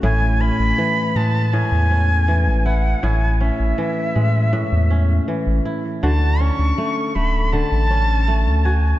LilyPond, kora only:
\new Staff \with { instrumentName = "Kora" } { \time 4/4 \key a \major \tempo 4 = 80 <a, e'>8 cis'8 e8 gis8 a,8 cis'8 e8 e'8 | <a, e'>8 cis'8 e8 gis8 a,8 cis'8 e8 e'8 | <d fis'>8 cis'8 a8 a8 d8 cis'8 a8 fis'8 | }